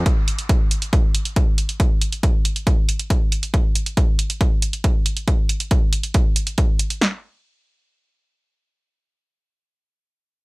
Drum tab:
HH |x-xxx-xxx-xxx-xx|x-xxx-xxx-xxx-xx|x-xxx-xxx-xxx-xx|x-xxx-xxx-xxx-xx|
SD |----------------|----------------|----------------|----------------|
BD |o---o---o---o---|o---o---o---o---|o---o---o---o---|o---o---o---o---|

HH |----------------|----------------|
SD |o---------------|----------------|
BD |----------------|----------------|